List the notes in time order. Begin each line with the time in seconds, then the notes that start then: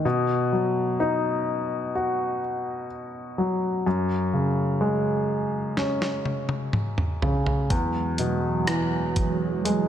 0.05 B2
0.53 F#3
1.00 D#4
1.95 F#4
3.38 F#3
3.86 F#2
4.34 C#3
4.81 G#3
5.77 C#4, snare
6.02 snare
6.25 high tom
6.49 high tom
6.73 mid tom
6.98 mid tom
7.22 C#3, floor tom
7.46 floor tom
7.70 E2 E3 F#3 G#3, kick, closed hi-hat
8.18 B2, closed hi-hat
8.67 E3, cross-stick, closed hi-hat
9.16 kick, closed hi-hat
9.65 G#3, closed hi-hat